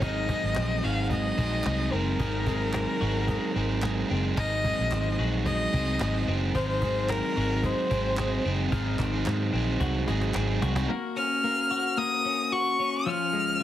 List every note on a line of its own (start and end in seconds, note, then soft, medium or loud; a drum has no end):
0.00 0.33 G#1 medium
0.00 0.29 G#2 medium
0.00 2.19 D#3 medium
0.00 0.29 D#3 medium
0.00 0.27 F#3 medium
0.00 0.29 G#3 medium
0.00 0.56 C4 medium
0.00 0.28 C4 medium
0.00 0.29 D#4 medium
0.00 0.29 G#4 medium
0.00 0.86 D#5 loud
0.00 cajon bass loud
0.28 0.82 F#3 medium
0.28 1.10 G#3 medium
0.28 0.83 C4 medium
0.28 0.84 D#4 medium
0.28 0.84 G#4 medium
0.28 cajon bass medium
0.28 cajon slap soft
0.43 0.55 G#1 medium
0.55 0.80 A#1 medium
0.55 1.37 C4 medium
0.55 cajon slap loud
0.55 clap medium
0.83 1.30 G#1 medium
0.83 1.37 F#3 medium
0.83 1.37 C4 medium
0.83 1.38 D#4 medium
0.83 3.01 F#4 medium
0.83 1.39 G#4 medium
0.83 1.11 F5 medium
0.83 cajon slap soft
1.10 1.65 G#3 medium
1.10 1.94 D#5 loud
1.10 cajon bass medium
1.10 cajon slap soft
1.37 1.61 A#1 medium
1.37 1.64 F#3 medium
1.37 1.92 C4 medium
1.37 1.64 C4 medium
1.37 1.65 D#4 medium
1.37 1.66 G#4 medium
1.37 cajon bass medium
1.64 1.89 C2 medium
1.64 1.91 F#3 medium
1.64 2.46 G#3 medium
1.64 1.92 C4 medium
1.64 1.92 D#4 medium
1.64 1.93 G#4 medium
1.64 cajon slap loud
1.64 clap medium
1.92 2.16 F#1 medium
1.92 2.19 F#3 medium
1.92 2.73 C4 medium
1.92 2.19 C4 medium
1.92 2.19 D#4 medium
1.92 2.20 G#4 medium
1.92 4.10 A#4 medium
2.19 2.84 G#1 loud
2.19 2.47 G#2 medium
2.19 4.37 D#3 medium
2.19 2.47 D#3 medium
2.19 2.45 F#3 medium
2.19 2.46 C4 medium
2.19 2.46 D#4 medium
2.19 2.47 G#4 medium
2.19 cajon bass loud
2.46 3.00 F#3 medium
2.46 3.28 G#3 medium
2.46 3.01 C4 medium
2.46 3.02 D#4 medium
2.46 3.02 G#4 medium
2.46 cajon bass medium
2.46 cajon slap soft
2.73 3.55 C4 medium
2.73 cajon slap loud
2.73 clap medium
3.01 3.36 G#1 medium
3.01 3.55 F#3 medium
3.01 3.56 C4 medium
3.01 3.56 D#4 medium
3.01 5.19 F#4 medium
3.01 3.57 G#4 medium
3.01 cajon slap soft
3.28 3.82 G#3 medium
3.28 cajon bass medium
3.28 cajon slap soft
3.55 4.02 G#1 loud
3.55 3.81 F#3 medium
3.55 4.10 C4 medium
3.55 3.82 C4 medium
3.55 3.82 D#4 medium
3.55 3.83 G#4 medium
3.55 cajon slap soft
3.82 4.08 F#3 medium
3.82 4.63 G#3 medium
3.82 4.08 C4 medium
3.82 4.09 D#4 medium
3.82 4.10 G#4 medium
3.82 cajon slap loud
3.82 clap loud
4.09 4.34 F#1 medium
4.09 4.36 F#3 medium
4.09 4.36 C4 medium
4.09 4.91 C4 medium
4.09 4.36 D#4 medium
4.09 4.36 G#4 medium
4.36 4.72 G#1 loud
4.36 4.64 G#2 medium
4.36 4.64 D#3 medium
4.36 6.55 D#3 medium
4.36 4.62 F#3 medium
4.36 4.63 C4 medium
4.36 4.64 D#4 medium
4.36 4.64 G#4 medium
4.36 5.15 D#5 loud
4.36 cajon bass loud
4.63 5.18 F#3 medium
4.63 5.46 G#3 medium
4.63 5.19 C4 medium
4.63 5.19 D#4 medium
4.63 5.20 G#4 medium
4.63 cajon bass medium
4.63 cajon slap soft
4.79 4.90 A#1 medium
4.92 5.15 G#1 medium
4.92 5.73 C4 medium
4.92 cajon slap medium
4.92 clap medium
5.18 5.65 A#1 medium
5.18 5.72 F#3 medium
5.18 5.73 C4 medium
5.18 5.73 D#4 medium
5.18 7.36 F#4 medium
5.18 5.74 G#4 medium
5.18 cajon slap soft
5.46 6.00 G#3 medium
5.46 6.24 D#5 loud
5.46 cajon bass medium
5.46 cajon slap soft
5.73 5.97 C2 medium
5.73 5.98 F#3 medium
5.73 5.99 C4 medium
5.73 6.28 C4 medium
5.73 6.00 D#4 medium
5.73 6.00 G#4 medium
5.73 cajon bass medium
6.00 6.24 G#1 loud
6.00 6.26 F#3 medium
6.00 6.82 G#3 medium
6.00 6.26 C4 medium
6.00 6.27 D#4 medium
6.00 6.28 G#4 medium
6.00 cajon slap loud
6.00 clap medium
6.27 6.51 F#1 medium
6.27 6.54 F#3 medium
6.27 6.54 C4 medium
6.27 7.09 C4 medium
6.27 6.55 D#4 medium
6.27 6.55 G#4 medium
6.54 7.20 G#1 loud
6.54 6.82 G#2 medium
6.54 6.82 D#3 medium
6.54 8.71 D#3 medium
6.54 6.81 F#3 medium
6.54 6.81 C4 medium
6.54 6.82 D#4 medium
6.54 6.83 G#4 medium
6.54 6.67 C5 loud
6.54 cajon bass loud
6.69 7.11 C5 loud
6.82 7.35 F#3 medium
6.82 7.63 G#3 medium
6.82 7.36 C4 medium
6.82 7.37 D#4 medium
6.82 7.38 G#4 medium
6.82 cajon bass medium
6.82 cajon slap soft
7.09 7.90 C4 medium
7.09 7.66 A#4 loud
7.09 cajon slap loud
7.09 clap medium
7.36 7.71 G#1 medium
7.36 7.90 F#3 medium
7.36 7.91 C4 medium
7.36 7.91 D#4 medium
7.36 9.02 F#4 medium
7.36 7.92 G#4 medium
7.36 cajon slap soft
7.63 8.17 G#3 medium
7.63 8.46 C5 medium
7.63 cajon bass medium
7.63 cajon slap soft
7.90 8.37 G#1 loud
7.90 8.16 F#3 medium
7.90 8.45 C4 medium
7.90 8.17 C4 medium
7.90 8.18 D#4 medium
7.90 8.19 G#4 medium
7.90 cajon bass medium
8.17 8.44 F#3 medium
8.17 9.25 G#3 medium
8.17 8.44 C4 medium
8.17 8.45 D#4 medium
8.17 8.46 G#4 medium
8.17 cajon slap loud
8.17 clap medium
8.45 8.68 F#1 medium
8.45 8.71 F#3 medium
8.45 8.99 C4 medium
8.45 8.72 C4 medium
8.45 8.72 D#4 medium
8.45 8.72 G#4 medium
8.45 cajon slap soft
8.72 8.95 G#1 loud
8.72 9.13 G#2 medium
8.72 10.89 D#3 medium
8.72 9.13 D#3 medium
8.72 9.13 F#3 medium
8.72 9.13 C4 loud
8.72 9.13 D#4 medium
8.72 9.12 G#4 loud
8.72 cajon bass loud
8.99 9.22 G#1 loud
8.99 9.52 C4 medium
8.99 cajon bass medium
8.99 clap medium
9.13 9.52 F#3 medium
9.13 9.53 C4 medium
9.13 9.54 D#4 medium
9.13 9.54 G#4 medium
9.26 9.50 G#2 medium
9.26 10.06 G#3 medium
9.26 cajon slap loud
9.26 clap medium
9.53 9.76 A#1 medium
9.53 10.07 F#3 medium
9.53 10.34 C4 medium
9.53 10.08 C4 medium
9.53 10.08 D#4 medium
9.53 10.09 G#4 medium
9.80 10.04 C2 medium
9.80 10.62 F#4 medium
9.80 cajon bass medium
9.80 cajon slap medium
10.07 10.31 G#1 medium
10.07 10.33 F#3 medium
10.07 10.88 G#3 medium
10.07 10.34 C4 medium
10.07 10.35 D#4 medium
10.07 10.35 G#4 medium
10.07 cajon slap medium
10.22 cajon slap medium
10.34 10.58 G#1 loud
10.34 10.76 F#3 medium
10.34 10.95 C4 medium
10.34 10.75 C4 medium
10.34 10.75 D#4 medium
10.34 10.74 G#4 medium
10.34 cajon slap medium
10.34 clap loud
10.62 10.85 C2 medium
10.62 10.89 F#4 medium
10.62 cajon slap medium
10.75 10.90 F#3 soft
10.75 10.90 C4 soft
10.75 10.90 D#4 medium
10.75 10.89 G#4 medium
10.75 cajon slap loud
10.89 11.43 A#3 medium
10.89 11.69 F#4 medium
11.17 12.25 C#4 medium
11.17 12.00 F6 loud
11.44 11.96 A#3 medium
11.71 12.51 F#4 medium
11.97 13.12 A#3 medium
11.97 12.54 D#6 loud
12.25 12.79 C#4 medium
12.52 13.12 F#4 medium
12.52 13.09 C#6 loud
12.79 13.05 C#4 medium
13.06 13.59 F3 medium
13.06 13.63 C#4 medium
13.06 13.63 F6 loud
13.33 13.63 G#3 medium
13.60 13.63 F3 medium